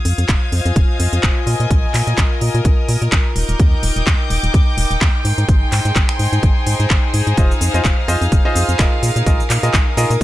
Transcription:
Already playing: string section F4, violin section F5 D#6 G#6
0.05 fm bass F2, open hi-hat
0.16 fm bass F2, string section C5, closed hi-hat
0.29 fm bass F1, kick, clap, closed hi-hat
0.44 string section D#5
0.52 fm bass F2, string section G#5, open hi-hat
0.66 fm bass F2, closed hi-hat
0.76 fm bass F1, kick, closed hi-hat
1.00 fm bass F2, open hi-hat
1.13 fm bass F2, closed hi-hat
1.23 fm bass F1, finger snap, kick, clap
1.47 fm bass A#2, violin section A#4 G#5, open hi-hat
1.60 fm bass A#2, closed hi-hat
1.71 fm bass A#1, kick, closed hi-hat
1.78 string section A#4
1.94 fm bass A#2, clap, open hi-hat
2.07 fm bass A#2, closed hi-hat
2.18 fm bass A#1, kick, clap, closed hi-hat
2.41 fm bass A#2, open hi-hat
2.55 fm bass A#2, closed hi-hat
2.65 fm bass A#1, kick, closed hi-hat
2.89 fm bass A#2, open hi-hat
3.02 fm bass A#2, closed hi-hat
3.12 fm bass A#1, finger snap, kick, clap
3.36 fm bass D#1, string section D#4, violin section D#5 D6 G6, open hi-hat
3.49 fm bass D#1, closed hi-hat
3.57 fm bass D#2, string section G5, kick, closed hi-hat
3.72 string section D6
3.83 fm bass D#1, open hi-hat
3.96 fm bass D#1, closed hi-hat
4.07 fm bass D#2, kick, clap, closed hi-hat
4.30 fm bass D#1, open hi-hat
4.43 fm bass D#1, closed hi-hat
4.54 fm bass D#2, kick, closed hi-hat
4.77 fm bass D#1, open hi-hat
4.91 fm bass D#1, closed hi-hat
5.01 fm bass D#2, finger snap, kick, clap
5.25 fm bass G#2, violin section G#4 G5 C6, open hi-hat
5.38 fm bass G#2, closed hi-hat
5.49 fm bass G#1, string section G#4, kick, closed hi-hat
5.69 fm bass G#2, string section C5, clap, open hi-hat
5.85 fm bass G#2, closed hi-hat
5.96 fm bass G#1, kick, clap, closed hi-hat
6.09 finger snap
6.19 fm bass G#2, open hi-hat
6.33 fm bass G#2, closed hi-hat
6.43 fm bass G#1, kick, closed hi-hat
6.67 fm bass G#2, open hi-hat
6.80 fm bass G#2, closed hi-hat
6.90 fm bass G#1, finger snap, kick, clap
7.14 fm bass G#2, open hi-hat
7.27 fm bass G#2, closed hi-hat
7.37 fm bass F1, grand piano F4 G#4 C5 D#5, violin section F5 D#6 F6, kick, closed hi-hat, cabasa
7.51 cabasa
7.61 fm bass F2, open hi-hat, cabasa
7.74 fm bass F2, grand piano F4 G#4 C5 D#5, string section F5, closed hi-hat, cabasa
7.85 fm bass F1, kick, clap, closed hi-hat, cabasa
8.08 fm bass F2, grand piano F4 G#4 C5 D#5, open hi-hat, cabasa
8.21 fm bass F2, closed hi-hat, cabasa
8.32 fm bass F1, kick, closed hi-hat, cabasa
8.45 grand piano F4 G#4 C5 D#5
8.55 fm bass F2, open hi-hat, cabasa
8.69 fm bass F2, closed hi-hat, cabasa
8.79 fm bass F1, grand piano F4 G#4 A#4 D#5, finger snap, kick, clap, cabasa
9.03 fm bass A#2, violin section A#4 G#5, open hi-hat, cabasa
9.16 fm bass A#2, closed hi-hat, cabasa
9.20 string section A#4
9.26 fm bass A#1, grand piano F4 G#4 A#4 D#5, kick, closed hi-hat, cabasa
9.40 cabasa
9.50 fm bass A#2, clap, open hi-hat, cabasa
9.63 fm bass A#2, grand piano F4 G#4 A#4 D#5, closed hi-hat, cabasa
9.74 fm bass A#1, kick, clap, closed hi-hat, cabasa
9.97 fm bass A#2, grand piano F4 G#4 A#4 D#5, open hi-hat, cabasa
10.10 fm bass A#2, closed hi-hat, cabasa

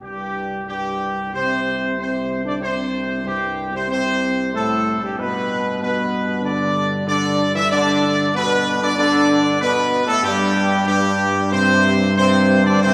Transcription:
0.01 tuba C2, trombone section G2, french horn section G3, trumpet section G4
0.66 trombone section G2, french horn section G3, trumpet section G4
1.33 trombone section C3, french horn section C4, trumpet section C5
1.97 trombone section C3, french horn section C4, trumpet section C5
2.44 trombone section D3, french horn section D4, trumpet section D5
2.60 trombone section C3, french horn section C4, trumpet section C5
3.24 trombone section G2, french horn section G3, trumpet section G4
3.72 trombone section C3, french horn section C4, trumpet section C5
3.88 trombone section C3, french horn section C4, trumpet section C5
4.54 trombone section A2, french horn section A3, trumpet section A4
5.02 trombone section G2, french horn section G3, trumpet section G4
5.18 tuba G2, trombone section B2, french horn section B3, trumpet section B4
5.81 trombone section B2, french horn section B3, trumpet section B4
6.43 trombone section D3, french horn section D4, trumpet section D5
7.07 trombone section D3, french horn section D4, trumpet section D5
7.55 trombone section E3, french horn section E4, trumpet section E5
7.71 trombone section D3, french horn section D4, trumpet section D5
8.35 trombone section B2, french horn section B3, trumpet section B4
8.82 trombone section D3, french horn section D4, trumpet section D5
8.98 trombone section D3, french horn section D4, trumpet section D5
9.61 trombone section B2, french horn section B3, trumpet section B4
10.07 trombone section A2, french horn section A3, trumpet section A4
10.23 trombone section G2, tuba G2, french horn section G3, trumpet section G4
10.86 trombone section G2, french horn section G3, trumpet section G4
11.52 trombone section C3, french horn section C4, trumpet section C5
12.17 trombone section C3, french horn section C4, trumpet section C5
12.65 trombone section D3, french horn section D4, trumpet section D5
12.81 trombone section C3, french horn section C4, trumpet section C5

